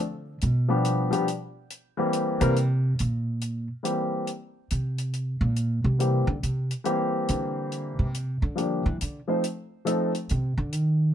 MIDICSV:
0, 0, Header, 1, 4, 480
1, 0, Start_track
1, 0, Tempo, 429185
1, 464, Time_signature, 3, 2, 24, 8
1, 12461, End_track
2, 0, Start_track
2, 0, Title_t, "Grand piano"
2, 0, Program_c, 0, 0
2, 766, Note_on_c, 0, 53, 60
2, 771, Note_on_c, 0, 55, 58
2, 775, Note_on_c, 0, 59, 49
2, 780, Note_on_c, 0, 62, 60
2, 786, Note_on_c, 0, 67, 67
2, 1219, Note_off_c, 0, 53, 0
2, 1223, Note_off_c, 0, 55, 0
2, 1225, Note_off_c, 0, 59, 0
2, 1227, Note_off_c, 0, 62, 0
2, 1230, Note_off_c, 0, 67, 0
2, 1236, Note_on_c, 0, 53, 67
2, 1242, Note_on_c, 0, 55, 57
2, 1250, Note_on_c, 0, 59, 56
2, 1251, Note_on_c, 0, 62, 60
2, 1259, Note_on_c, 0, 67, 76
2, 1396, Note_off_c, 0, 53, 0
2, 1399, Note_off_c, 0, 55, 0
2, 1403, Note_off_c, 0, 59, 0
2, 1404, Note_off_c, 0, 62, 0
2, 1408, Note_off_c, 0, 67, 0
2, 2205, Note_on_c, 0, 52, 71
2, 2210, Note_on_c, 0, 55, 63
2, 2219, Note_on_c, 0, 58, 60
2, 2221, Note_on_c, 0, 60, 57
2, 2225, Note_on_c, 0, 67, 65
2, 2660, Note_off_c, 0, 52, 0
2, 2662, Note_off_c, 0, 55, 0
2, 2667, Note_off_c, 0, 58, 0
2, 2668, Note_off_c, 0, 60, 0
2, 2670, Note_off_c, 0, 67, 0
2, 2683, Note_on_c, 0, 52, 62
2, 2685, Note_on_c, 0, 55, 67
2, 2697, Note_on_c, 0, 58, 65
2, 2699, Note_on_c, 0, 60, 65
2, 2700, Note_on_c, 0, 70, 75
2, 2840, Note_off_c, 0, 52, 0
2, 2841, Note_off_c, 0, 55, 0
2, 2846, Note_off_c, 0, 58, 0
2, 2847, Note_off_c, 0, 60, 0
2, 2848, Note_off_c, 0, 70, 0
2, 4283, Note_on_c, 0, 52, 52
2, 4288, Note_on_c, 0, 55, 50
2, 4291, Note_on_c, 0, 58, 44
2, 4294, Note_on_c, 0, 60, 46
2, 4301, Note_on_c, 0, 67, 57
2, 4773, Note_off_c, 0, 52, 0
2, 4776, Note_off_c, 0, 55, 0
2, 4777, Note_off_c, 0, 58, 0
2, 4779, Note_off_c, 0, 60, 0
2, 4782, Note_off_c, 0, 67, 0
2, 6696, Note_on_c, 0, 52, 45
2, 6701, Note_on_c, 0, 55, 46
2, 6704, Note_on_c, 0, 58, 46
2, 6709, Note_on_c, 0, 60, 46
2, 6716, Note_on_c, 0, 67, 55
2, 6983, Note_off_c, 0, 52, 0
2, 6986, Note_off_c, 0, 55, 0
2, 6987, Note_off_c, 0, 58, 0
2, 6990, Note_off_c, 0, 60, 0
2, 6993, Note_off_c, 0, 67, 0
2, 7651, Note_on_c, 0, 52, 60
2, 7657, Note_on_c, 0, 55, 52
2, 7664, Note_on_c, 0, 58, 51
2, 7668, Note_on_c, 0, 60, 59
2, 7670, Note_on_c, 0, 67, 70
2, 9000, Note_off_c, 0, 52, 0
2, 9003, Note_off_c, 0, 55, 0
2, 9006, Note_off_c, 0, 58, 0
2, 9008, Note_off_c, 0, 60, 0
2, 9009, Note_off_c, 0, 67, 0
2, 9568, Note_on_c, 0, 53, 47
2, 9576, Note_on_c, 0, 55, 45
2, 9578, Note_on_c, 0, 58, 43
2, 9584, Note_on_c, 0, 62, 46
2, 9587, Note_on_c, 0, 67, 49
2, 9860, Note_off_c, 0, 53, 0
2, 9864, Note_off_c, 0, 55, 0
2, 9865, Note_off_c, 0, 58, 0
2, 9868, Note_off_c, 0, 62, 0
2, 9870, Note_off_c, 0, 67, 0
2, 10374, Note_on_c, 0, 53, 51
2, 10377, Note_on_c, 0, 57, 40
2, 10383, Note_on_c, 0, 60, 51
2, 10388, Note_on_c, 0, 63, 46
2, 10394, Note_on_c, 0, 72, 53
2, 10527, Note_off_c, 0, 53, 0
2, 10528, Note_off_c, 0, 57, 0
2, 10531, Note_off_c, 0, 60, 0
2, 10534, Note_off_c, 0, 63, 0
2, 10537, Note_off_c, 0, 72, 0
2, 11017, Note_on_c, 0, 53, 59
2, 11020, Note_on_c, 0, 57, 49
2, 11030, Note_on_c, 0, 60, 47
2, 11032, Note_on_c, 0, 63, 53
2, 11038, Note_on_c, 0, 69, 61
2, 11304, Note_off_c, 0, 53, 0
2, 11306, Note_off_c, 0, 57, 0
2, 11311, Note_off_c, 0, 60, 0
2, 11312, Note_off_c, 0, 63, 0
2, 11315, Note_off_c, 0, 69, 0
2, 12461, End_track
3, 0, Start_track
3, 0, Title_t, "Upright bass"
3, 0, Program_c, 1, 32
3, 0, Note_on_c, 1, 50, 80
3, 419, Note_off_c, 1, 50, 0
3, 477, Note_on_c, 1, 47, 88
3, 1220, Note_off_c, 1, 47, 0
3, 2695, Note_on_c, 1, 48, 107
3, 3297, Note_off_c, 1, 48, 0
3, 3358, Note_on_c, 1, 46, 85
3, 4100, Note_off_c, 1, 46, 0
3, 5273, Note_on_c, 1, 48, 82
3, 6018, Note_off_c, 1, 48, 0
3, 6048, Note_on_c, 1, 46, 91
3, 6500, Note_off_c, 1, 46, 0
3, 6536, Note_on_c, 1, 48, 94
3, 6984, Note_off_c, 1, 48, 0
3, 7015, Note_on_c, 1, 50, 101
3, 7178, Note_off_c, 1, 50, 0
3, 7192, Note_on_c, 1, 48, 74
3, 7493, Note_off_c, 1, 48, 0
3, 8156, Note_on_c, 1, 50, 93
3, 8901, Note_off_c, 1, 50, 0
3, 8936, Note_on_c, 1, 48, 83
3, 9385, Note_off_c, 1, 48, 0
3, 9419, Note_on_c, 1, 50, 90
3, 9866, Note_off_c, 1, 50, 0
3, 9906, Note_on_c, 1, 52, 94
3, 10064, Note_off_c, 1, 52, 0
3, 10087, Note_on_c, 1, 50, 78
3, 10269, Note_off_c, 1, 50, 0
3, 11531, Note_on_c, 1, 48, 86
3, 11821, Note_off_c, 1, 48, 0
3, 11828, Note_on_c, 1, 50, 94
3, 12004, Note_off_c, 1, 50, 0
3, 12004, Note_on_c, 1, 51, 103
3, 12461, Note_off_c, 1, 51, 0
3, 12461, End_track
4, 0, Start_track
4, 0, Title_t, "Drums"
4, 462, Note_on_c, 9, 42, 39
4, 573, Note_off_c, 9, 42, 0
4, 945, Note_on_c, 9, 42, 46
4, 1057, Note_off_c, 9, 42, 0
4, 1257, Note_on_c, 9, 42, 43
4, 1369, Note_off_c, 9, 42, 0
4, 1429, Note_on_c, 9, 42, 39
4, 1541, Note_off_c, 9, 42, 0
4, 1904, Note_on_c, 9, 42, 39
4, 2016, Note_off_c, 9, 42, 0
4, 2381, Note_on_c, 9, 42, 48
4, 2493, Note_off_c, 9, 42, 0
4, 2692, Note_on_c, 9, 42, 45
4, 2804, Note_off_c, 9, 42, 0
4, 2866, Note_on_c, 9, 42, 39
4, 2978, Note_off_c, 9, 42, 0
4, 3342, Note_on_c, 9, 42, 45
4, 3454, Note_off_c, 9, 42, 0
4, 3818, Note_on_c, 9, 42, 42
4, 3929, Note_off_c, 9, 42, 0
4, 4304, Note_on_c, 9, 42, 52
4, 4416, Note_off_c, 9, 42, 0
4, 4776, Note_on_c, 9, 42, 38
4, 4888, Note_off_c, 9, 42, 0
4, 5261, Note_on_c, 9, 42, 43
4, 5373, Note_off_c, 9, 42, 0
4, 5572, Note_on_c, 9, 42, 40
4, 5683, Note_off_c, 9, 42, 0
4, 5742, Note_on_c, 9, 42, 33
4, 5853, Note_off_c, 9, 42, 0
4, 6220, Note_on_c, 9, 42, 33
4, 6332, Note_off_c, 9, 42, 0
4, 6709, Note_on_c, 9, 42, 40
4, 6821, Note_off_c, 9, 42, 0
4, 7193, Note_on_c, 9, 42, 44
4, 7305, Note_off_c, 9, 42, 0
4, 7500, Note_on_c, 9, 42, 37
4, 7612, Note_off_c, 9, 42, 0
4, 7663, Note_on_c, 9, 42, 39
4, 7775, Note_off_c, 9, 42, 0
4, 8146, Note_on_c, 9, 42, 45
4, 8258, Note_off_c, 9, 42, 0
4, 8631, Note_on_c, 9, 42, 36
4, 8742, Note_off_c, 9, 42, 0
4, 9108, Note_on_c, 9, 42, 41
4, 9220, Note_off_c, 9, 42, 0
4, 9593, Note_on_c, 9, 42, 40
4, 9705, Note_off_c, 9, 42, 0
4, 10074, Note_on_c, 9, 42, 45
4, 10185, Note_off_c, 9, 42, 0
4, 10553, Note_on_c, 9, 42, 43
4, 10665, Note_off_c, 9, 42, 0
4, 11033, Note_on_c, 9, 42, 47
4, 11145, Note_off_c, 9, 42, 0
4, 11346, Note_on_c, 9, 42, 38
4, 11458, Note_off_c, 9, 42, 0
4, 11510, Note_on_c, 9, 42, 34
4, 11622, Note_off_c, 9, 42, 0
4, 11995, Note_on_c, 9, 42, 41
4, 12106, Note_off_c, 9, 42, 0
4, 12461, End_track
0, 0, End_of_file